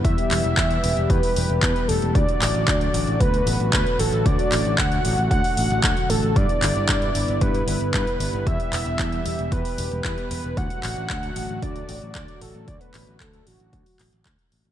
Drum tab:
HH |xxoxxxoxxooxxxox|xxoxxxoxxxoxxxox|xxoxxxoxxooxxxox|xxoxxxoxxxoxxxox|
CP |--x-x-------x---|--x-x-------x---|--x-x-------x---|--x-x-------x---|
BD |o---o---o---o---|o---o---o---o---|o---o---o---o---|o---o---o---o---|

HH |xxoxxxoxxooxxxox|xxoxxxoxxxoxxxox|xxoxxxoxxooxxxox|
CP |--x-x-------x---|--x-x-------x---|--x-x-----x-x---|
BD |o---o---o---o---|o---o---o---o---|o---o---o---o---|